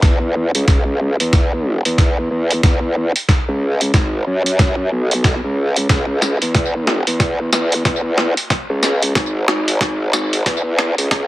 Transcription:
0.02 0.52 E2 medium
0.02 kick medium
0.02 snare medium
0.02 closed hi-hat medium
0.55 0.66 C#2 medium
0.55 closed hi-hat medium
0.68 1.17 C#2 loud
0.68 kick medium
0.68 snare medium
0.68 closed hi-hat medium
1.20 1.82 E2 medium
1.20 closed hi-hat medium
1.33 kick loud
1.33 snare medium
1.33 closed hi-hat soft
1.85 2.29 E2 medium
1.85 closed hi-hat medium
1.98 kick loud
1.98 snare medium
1.98 closed hi-hat medium
2.31 2.61 E2 loud
2.51 closed hi-hat medium
2.63 3.12 E2 loud
2.63 kick medium
2.63 snare medium
2.63 closed hi-hat medium
3.16 closed hi-hat medium
3.29 kick medium
3.29 snare medium
3.29 closed hi-hat soft
3.48 3.92 C#2 medium
3.81 closed hi-hat medium
3.94 4.24 G#1 medium
3.94 kick medium
3.94 snare medium
3.94 closed hi-hat soft
4.27 4.90 F#2 medium
4.46 closed hi-hat medium
4.59 kick loud
4.59 snare medium
4.59 closed hi-hat soft
4.92 5.41 B1 medium
5.11 closed hi-hat medium
5.24 kick medium
5.24 snare medium
5.24 closed hi-hat soft
5.44 5.87 C#2 medium
5.76 closed hi-hat medium
5.89 6.39 C#2 loud
5.89 kick medium
5.89 snare medium
5.89 closed hi-hat soft
6.22 snare medium
6.22 tambourine medium
6.42 7.04 E2 medium
6.42 closed hi-hat medium
6.55 kick loud
6.55 snare medium
6.55 closed hi-hat soft
6.87 snare medium
7.07 7.50 E2 loud
7.07 closed hi-hat medium
7.20 kick loud
7.20 snare medium
7.20 closed hi-hat soft
7.52 7.83 E2 medium
7.52 snare medium
7.52 tambourine medium
7.72 closed hi-hat medium
7.85 8.34 E2 medium
7.85 kick medium
7.85 snare medium
7.85 closed hi-hat medium
8.18 snare medium
8.37 closed hi-hat medium
8.50 kick medium
8.50 snare medium
8.50 closed hi-hat soft
8.70 9.13 C#2 medium
8.83 snare medium
8.83 tambourine medium
9.02 closed hi-hat medium
9.15 9.46 G#1 loud
9.15 kick loud
9.15 snare medium
9.15 closed hi-hat soft
9.48 10.44 G#1 medium
9.48 snare medium
9.68 closed hi-hat medium
9.81 kick loud
9.81 snare medium
9.81 closed hi-hat soft
10.13 snare medium
10.13 tambourine medium
10.33 closed hi-hat medium
10.46 10.95 E2 loud
10.46 kick medium
10.46 snare medium
10.46 closed hi-hat medium
10.79 snare medium
10.98 11.09 C#2 loud
10.98 closed hi-hat medium
11.11 11.27 C#2 medium
11.11 kick loud
11.11 snare medium
11.11 closed hi-hat medium

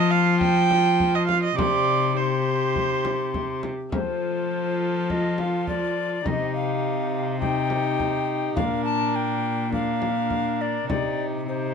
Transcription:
0.00 1.54 F3 medium
0.00 1.60 F3 medium
0.00 1.58 A3 medium
0.00 1.54 C4 medium
0.00 1.53 F4 medium
0.00 1.59 F4 medium
0.00 0.12 D#5 loud
0.00 1.26 A5 medium
0.11 0.40 F5 medium
0.40 1.16 G5 loud
0.40 frame drum medium
0.71 frame drum medium
1.00 frame drum medium
1.15 1.27 D#5 medium
1.27 1.42 F5 medium
1.27 frame drum medium
1.43 1.57 D#5 medium
1.55 3.95 C3 medium
1.55 3.69 C3 medium
1.55 2.13 C4 soft
1.55 2.14 D#4 medium
1.55 2.15 G4 medium
1.55 2.17 D5 loud
1.55 2.13 C6 medium
1.55 frame drum medium
2.14 3.89 C4 soft
2.14 3.95 D#4 soft
2.14 3.70 G4 medium
2.14 3.63 C5 medium
2.14 3.61 C6 medium
2.76 frame drum medium
3.05 frame drum medium
3.34 frame drum soft
3.63 frame drum medium
3.90 6.27 F3 medium
3.90 6.26 A3 soft
3.90 6.23 C4 soft
3.90 6.28 F4 soft
3.90 6.22 F4 medium
3.90 6.21 A4 medium
3.90 frame drum medium
3.94 6.28 F3 soft
3.94 5.12 C5 medium
5.10 5.41 D#5 medium
5.10 frame drum soft
5.38 5.68 F5 medium
5.38 frame drum soft
5.67 6.28 D5 medium
5.67 frame drum soft
6.24 8.57 C3 medium
6.24 8.60 C3 soft
6.24 7.38 C4 soft
6.24 7.39 D#4 soft
6.24 7.39 D#4 medium
6.24 7.39 G4 medium
6.24 6.55 D#5 medium
6.24 frame drum medium
6.55 7.40 F5 medium
7.39 8.58 C4 soft
7.39 8.59 D#4 soft
7.39 8.59 D#4 medium
7.39 8.58 G4 medium
7.39 8.54 G5 loud
7.39 frame drum soft
7.70 frame drum soft
8.00 frame drum soft
8.53 9.68 A#3 soft
8.53 9.69 D4 soft
8.53 9.71 F4 soft
8.53 9.72 A#4 medium
8.53 8.84 F5 medium
8.53 frame drum medium
8.57 10.92 A#2 medium
8.57 10.86 A#2 medium
8.57 9.73 D4 medium
8.85 9.17 A5 medium
9.16 9.73 G5 medium
9.69 10.90 A#3 soft
9.69 10.90 D4 soft
9.69 10.91 F4 soft
9.69 frame drum soft
9.73 10.91 D4 medium
9.73 10.91 A#4 medium
9.73 10.63 F5 medium
10.02 frame drum soft
10.30 frame drum soft
10.61 10.88 D5 medium
10.87 11.74 C3 soft
10.87 11.74 C3 medium
10.87 11.45 C4 soft
10.87 11.47 D#4 soft
10.87 11.48 D#4 medium
10.87 11.49 G4 soft
10.87 11.27 D5 medium
10.87 frame drum medium
11.46 11.74 C4 soft
11.46 11.74 D#4 soft
11.46 11.74 D#4 medium
11.46 11.74 G4 medium
11.46 11.74 C5 medium

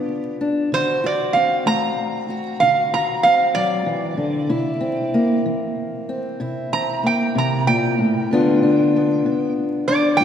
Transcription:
0.00 0.34 D3 medium
0.00 0.68 B3 soft
0.00 0.40 D4 soft
0.00 0.69 F4 medium
0.00 0.36 G4 medium
0.41 0.69 D4 medium
0.72 1.29 D3 medium
0.72 1.03 F#4 medium
0.72 1.04 C5 loud
1.04 2.29 F#4 medium
1.04 1.36 D5 medium
1.33 3.24 C4 medium
1.33 1.65 F5 medium
1.66 2.23 A3 medium
1.66 2.59 A#5 loud
2.30 2.62 F#4 medium
2.60 3.19 D3 medium
2.60 2.93 F#4 medium
2.60 2.91 F5 medium
2.94 4.48 F#4 medium
2.94 3.24 A#5 medium
3.23 4.48 C4 soft
3.23 3.55 F5 medium
3.55 3.86 F#3 medium
3.55 5.41 D5 loud
3.86 4.17 E3 medium
4.17 4.50 D3 medium
4.49 5.07 C3 medium
4.49 6.39 E4 medium
4.81 6.08 C4 medium
5.14 7.02 A#3 medium
5.46 6.03 E3 medium
6.09 6.71 C4 medium
6.40 6.97 C3 medium
6.40 8.30 E4 medium
6.73 8.26 C4 medium
6.73 7.03 A#5 medium
7.03 8.26 A#3 medium
7.03 7.36 G5 medium
7.35 7.67 C3 medium
7.35 7.67 A#5 medium
7.67 7.98 A#2 medium
7.67 9.52 G5 loud
7.99 8.30 A2 medium
8.31 8.87 G2 medium
8.31 9.25 D3 medium
8.31 8.94 B3 medium
8.31 8.63 D4 medium
8.31 10.19 F4 medium
8.63 9.88 D4 medium
8.96 10.24 B3 medium
9.26 9.82 D3 medium
9.88 10.24 D4 medium
9.88 10.18 D5 loud
10.17 10.24 G2 medium
10.17 10.24 F4 medium
10.17 10.24 G5 loud

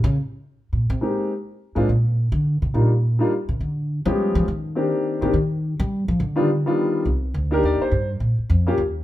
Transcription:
0.04 0.15 C#3 loud
0.73 0.89 A#2 medium
0.90 0.97 C3 loud
1.01 1.30 G#3 soft
1.01 1.30 A#3 soft
1.01 1.31 C4 soft
1.01 1.31 D#4 soft
1.01 1.31 G4 medium
1.75 1.87 G#2 medium
1.75 1.86 G#3 medium
1.75 1.86 A#3 medium
1.75 1.87 C4 medium
1.75 1.87 D4 medium
1.75 1.87 F4 medium
1.89 2.31 A#2 medium
2.32 2.60 D3 loud
2.62 2.74 C3 medium
2.74 3.17 A#2 medium
2.74 2.89 G3 medium
2.74 2.90 A#3 soft
2.74 2.90 D4 soft
2.74 2.90 D#4 soft
2.74 2.90 F4 medium
3.19 3.30 G3 medium
3.19 3.30 A#3 medium
3.19 3.30 D4 medium
3.19 3.31 D#4 medium
3.19 3.31 F4 medium
3.49 3.60 C3 medium
3.60 4.03 D3 medium
4.05 4.44 F3 medium
4.05 4.33 G3 loud
4.05 4.44 G#3 medium
4.05 4.44 B3 medium
4.05 4.45 C#4 medium
4.05 4.45 G4 medium
4.35 4.47 F3 loud
4.48 4.90 D#3 medium
4.75 5.18 D#3 medium
4.75 5.18 A#3 medium
4.75 5.18 C4 medium
4.75 5.19 D4 medium
4.75 5.19 G4 medium
5.21 5.33 D3 medium
5.21 5.32 D#3 medium
5.21 5.32 A#3 medium
5.21 5.32 C4 medium
5.21 5.33 D4 medium
5.21 5.33 G4 medium
5.33 5.76 D#3 medium
5.80 6.06 G3 loud
6.08 6.19 F3 loud
6.20 6.62 D3 loud
6.36 6.47 D#3 medium
6.36 6.47 G3 medium
6.36 6.47 B3 medium
6.36 6.47 D4 medium
6.36 6.47 F4 medium
6.66 7.04 D#3 medium
6.66 7.04 G3 medium
6.66 7.04 B3 medium
6.66 7.04 D4 medium
6.66 7.05 F4 medium
7.05 7.34 C2 medium
7.34 7.62 D2 medium
7.51 7.89 A#3 medium
7.51 7.90 D4 medium
7.51 7.90 D#4 medium
7.51 7.90 G4 medium
7.51 7.64 A#4 medium
7.63 7.79 D#2 medium
7.63 7.81 D5 medium
7.81 8.08 C5 medium
7.81 muted upright bass stroke soft
7.91 8.20 G2 medium
8.20 8.37 A#2 medium
8.38 muted upright bass stroke soft
8.50 8.77 F2 medium
8.67 8.77 A#3 medium
8.67 8.78 C#4 medium
8.67 8.78 F4 medium
8.67 8.78 G4 medium
8.78 9.04 D#2 medium

